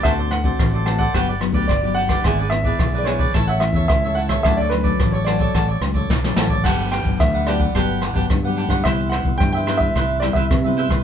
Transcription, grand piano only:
0.03 0.10 E5 medium
0.31 0.88 F#5 medium
0.86 0.99 A5 medium
0.98 1.64 F#5 medium
1.68 1.94 D5 medium
1.94 2.47 F#5 loud
2.50 2.96 E5 medium
2.99 3.06 D5 medium
3.04 3.44 C#5 medium
3.47 3.61 F#5 medium
3.60 3.87 E5 medium
3.88 4.17 E5 medium
4.15 4.21 F#5 medium
4.43 4.57 E5 medium
4.57 4.71 D5 medium
4.70 5.13 B4 medium
5.12 5.17 C#5 medium
5.25 6.05 D5 medium
6.64 6.93 F#5 medium
6.91 7.20 G5 medium
7.20 7.48 E5 medium
7.47 7.98 D5 medium
8.84 8.90 E5 medium
9.09 9.37 F#5 medium
9.38 9.51 G5 loud
9.53 9.82 G5 medium
9.78 10.18 E5 medium
10.20 10.25 D5 medium
10.33 10.74 E5 medium

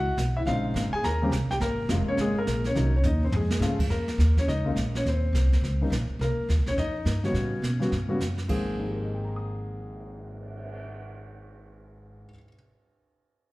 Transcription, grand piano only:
0.00 0.17 F#4 medium
0.00 0.15 F#5 medium
0.37 0.43 E4 medium
0.37 0.41 E5 medium
0.47 0.89 C#3 medium
0.47 0.90 G#3 medium
0.47 0.90 C4 medium
0.47 0.90 D#4 medium
0.47 0.91 F4 medium
0.47 0.90 F5 medium
0.93 1.04 G#4 medium
0.93 1.04 G#5 medium
1.04 1.32 A#4 medium
1.04 1.31 A#5 medium
1.22 1.32 C#3 medium
1.22 1.32 G3 medium
1.22 1.32 C4 medium
1.22 1.32 G4 medium
1.51 1.57 G4 medium
1.51 1.56 G5 medium
1.61 1.89 A#3 medium
1.61 1.88 A#4 medium
1.90 2.33 C3 medium
1.90 2.21 G#3 medium
1.90 2.33 A#3 medium
1.90 2.33 F4 medium
2.08 2.19 C#4 medium
2.08 2.18 C#5 medium
2.21 2.37 G#3 medium
2.21 2.38 G#4 medium
2.38 2.64 A#3 medium
2.38 2.67 A#4 medium
2.66 2.93 C#4 medium
2.66 2.92 C#5 medium
2.75 2.91 C3 medium
2.75 2.91 F#3 medium
2.75 2.92 A#3 medium
2.75 2.92 D#4 medium
2.96 3.02 C#4 medium
2.96 3.00 C#5 medium
3.06 3.22 D#4 medium
3.06 3.23 D#5 medium
3.25 3.34 C4 medium
3.25 3.34 C5 medium
3.36 3.78 G#3 soft
3.36 3.78 G#4 medium
3.60 3.77 C#3 medium
3.60 3.77 F3 medium
3.60 3.77 A3 medium
3.60 3.78 F4 medium
3.90 4.34 A#3 medium
3.90 4.38 A#4 medium
4.39 4.44 C#4 medium
4.39 4.43 C#5 medium
4.48 4.75 D#4 medium
4.48 4.75 D#5 medium
4.65 4.75 C#3 medium
4.65 4.75 G#3 medium
4.65 4.76 A#3 medium
4.65 4.76 F4 medium
4.97 5.02 C#4 medium
4.97 5.01 C#5 medium
5.08 5.89 C4 medium
5.08 5.89 C5 medium
5.81 5.90 C#3 medium
5.81 5.91 G3 medium
5.81 5.91 A#3 soft
5.81 5.91 D#4 medium
6.21 6.49 A#3 medium
6.21 6.47 A#4 medium
6.68 6.74 C#4 medium
6.68 6.72 C#5 medium
6.78 7.22 D#4 medium
6.78 7.25 D#5 medium
7.23 7.61 C#3 medium
7.23 7.61 G3 medium
7.23 7.61 B3 medium
7.23 8.18 C#4 medium
7.23 7.62 F#4 medium
7.23 8.17 C#5 medium
7.80 7.90 C#3 medium
7.80 7.90 G3 medium
7.80 7.91 B3 medium
7.80 7.91 F#4 medium
8.08 8.19 C#3 medium
8.08 8.19 G3 medium
8.08 8.19 B3 medium
8.08 8.19 F#4 medium
8.48 12.28 G#2 medium
8.48 12.29 F3 medium
8.48 12.29 A#3 medium
8.48 12.30 C4 medium
8.48 12.25 G#4 medium
8.79 12.26 D#4 soft
8.87 12.29 G4 soft
8.95 12.34 A#4 soft
9.03 12.38 D#5 soft
9.14 12.43 G5 soft
9.25 12.48 A#5 soft
9.36 12.54 D#6 soft

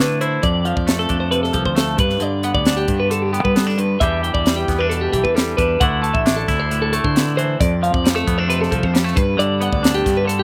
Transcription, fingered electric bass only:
0.00 0.37 D3 medium
0.43 0.73 F2 medium
0.77 1.07 F2 medium
1.10 1.50 F2 medium
1.54 1.64 C2 medium
1.65 1.96 D2 medium
1.98 2.19 G2 medium
2.21 2.51 G2 medium
2.54 2.85 D2 medium
2.88 3.38 G2 medium
3.45 3.95 G3 medium
4.01 4.31 E2 loud
4.34 4.64 E2 medium
4.68 5.08 E2 medium
5.14 5.23 B1 medium
5.24 5.54 E2 medium
5.58 5.78 E2 medium
5.81 6.11 D2 medium
6.14 6.44 A1 medium
6.49 6.98 D2 medium
7.04 7.54 D3 medium
7.61 7.90 F2 medium
7.94 8.23 F2 medium
8.27 8.67 F2 medium
8.72 8.81 C2 medium
8.84 9.13 F2 medium
9.17 9.36 G2 medium
9.39 9.68 G2 medium
9.72 10.02 D2 medium
10.06 10.43 G2 medium

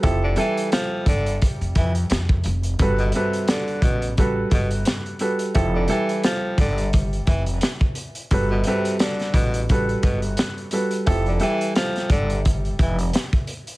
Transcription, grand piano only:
0.02 0.35 F3 medium
0.02 0.35 E4 medium
0.02 0.35 G4 medium
0.02 0.36 A4 loud
0.36 2.30 G3 loud
0.36 2.30 E4 medium
0.36 2.30 G4 medium
0.36 2.30 A4 loud
2.81 3.12 G3 medium
2.81 3.12 F#4 medium
2.81 3.12 A4 medium
2.81 3.13 B4 loud
3.15 4.11 G3 medium
3.15 4.11 F#4 medium
3.15 4.11 A4 medium
3.15 4.11 B4 loud
4.18 5.14 G3 medium
4.18 5.14 F#4 medium
4.18 5.14 A4 medium
4.18 5.15 B4 loud
5.20 5.53 G3 medium
5.20 5.53 F#4 medium
5.20 5.53 A4 medium
5.20 5.53 B4 medium
5.54 5.87 F3 medium
5.54 5.87 E4 loud
5.54 5.87 G4 medium
5.54 5.87 A4 loud
5.88 7.82 G3 medium
5.88 7.82 E4 medium
5.88 7.82 G4 medium
5.88 7.82 A4 loud
8.33 8.64 G3 medium
8.33 8.64 F#4 medium
8.33 8.64 A4 medium
8.33 8.64 B4 loud
8.67 9.62 G3 loud
8.67 9.63 F#4 medium
8.67 9.63 A4 medium
8.67 9.63 B4 loud
9.70 10.66 G3 medium
9.70 10.66 F#4 medium
9.70 10.66 A4 medium
9.70 10.67 B4 loud
10.72 11.05 G3 medium
10.72 11.05 F#4 medium
10.72 11.05 A4 medium
10.72 11.05 B4 medium
11.06 11.39 F3 medium
11.06 11.39 E4 medium
11.06 11.39 G4 medium
11.06 11.39 A4 loud
11.40 13.33 G3 loud
11.40 13.33 E4 medium
11.40 13.34 G4 medium
11.40 13.34 A4 loud

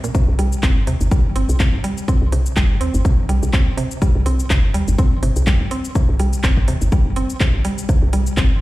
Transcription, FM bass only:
0.28 0.36 C2 loud
0.39 0.49 C2 medium
0.63 0.89 G1 loud
0.87 0.97 D#2 medium
1.01 1.08 G1 loud
1.36 1.45 G1 medium
1.49 1.57 C2 loud
1.73 1.81 G1 medium
2.22 2.29 C2 loud
2.32 2.42 C2 loud
2.57 2.82 G1 loud
2.81 2.90 D#2 medium
2.94 3.02 G1 loud
3.29 3.39 C2 medium
3.43 3.50 C2 loud
4.15 4.23 C2 loud
4.26 4.36 C2 medium
4.50 4.76 G1 medium
4.74 4.84 D#2 medium
4.88 4.96 G1 loud
5.23 5.32 G1 medium
5.36 5.44 C2 medium
5.61 5.68 G1 medium
6.09 6.16 C2 loud
6.20 6.29 C2 medium
6.44 6.69 G1 loud
6.68 6.78 D#2 medium
6.81 6.89 G1 loud
7.06 7.22 G1 medium
7.54 7.62 A#1 medium
8.02 8.10 C2 loud
8.13 8.23 C2 medium
8.37 8.61 G1 loud

